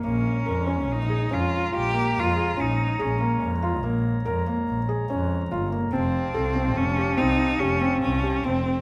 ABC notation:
X:1
M:7/4
L:1/8
Q:1/4=143
K:Bbdor
V:1 name="Woodwind section"
[A,db]12- [A,db]2- | [A,db]12- [A,db]2 | [Gf=a]12- [Gfa]2 |]
V:2 name="Cello"
D4 E2 F2 G2 F2 E2 | D2 z12 | C4 D2 E2 D2 D2 C2 |]
V:3 name="Felt piano"
B,2 B D2 A D2 F B,2 A D2 | A B,2 F B,2 B B,2 A D2 F B, | C2 =A C2 G C2 G C2 G C2 |]
V:4 name="Double bass" clef=bass
B,,,2 F,,2 B,,,2 F,,2 B,,,2 F,,2 B,,,2 | B,,,2 F,,2 B,,,2 F,,2 B,,,2 F,,2 G,,,2 | F,,,2 C,,2 F,,,2 C,,2 F,,,2 C,,2 F,,,2 |]